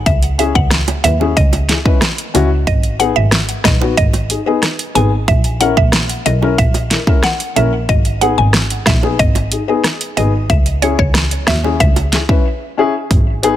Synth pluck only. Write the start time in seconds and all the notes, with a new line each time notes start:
0.06 E5
0.39 E5
0.55 F#5
1.04 E5
1.37 D#5
2.67 D#5
3.00 F#5
3.16 E5
3.65 D#5
3.97 D#5
4.95 G#5
5.28 E5
5.61 F#5
5.77 E5
6.26 D#5
6.58 E5
7.24 F#5
7.56 E5
7.89 D#5
8.21 F#5
8.38 G#5
8.87 E5
9.19 D#5
10.17 D#5
10.50 E5
10.82 C#5
10.99 C#5
11.48 E5
11.80 E5